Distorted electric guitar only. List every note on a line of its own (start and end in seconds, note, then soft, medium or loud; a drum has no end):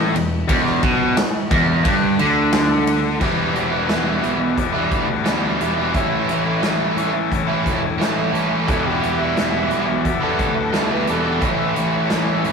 0.00 0.14 A2 medium
0.15 0.42 E2 medium
0.48 0.81 E2 loud
0.83 1.16 B2 loud
1.17 muted distorted electric guitar stroke medium
1.51 1.84 E2 loud
1.84 2.18 G2 loud
2.19 3.20 D3 medium
3.20 4.57 E3 medium
3.20 4.55 G3 medium
3.20 4.56 B3 medium
3.20 4.59 E4 medium
4.57 5.94 E3 medium
4.57 5.92 G3 medium
4.57 5.93 B3 medium
4.57 5.96 E4 medium
5.94 7.29 A2 medium
5.94 7.32 E3 medium
5.94 7.30 A3 medium
5.94 7.30 C#4 medium
5.94 7.34 E4 medium
7.31 8.66 A2 medium
7.31 8.68 E3 medium
7.31 8.67 A3 medium
7.31 8.68 C#4 medium
7.31 8.70 E4 medium
8.68 10.04 E3 medium
8.68 10.03 G3 medium
8.68 10.03 B3 medium
8.68 10.06 E4 medium
10.05 11.42 E3 medium
10.05 11.40 G3 medium
10.05 11.41 B3 medium
10.05 11.44 E4 medium
11.42 12.52 A2 medium
11.42 12.52 E3 medium
11.42 12.52 A3 medium
11.42 12.52 C#4 medium
11.42 12.52 E4 medium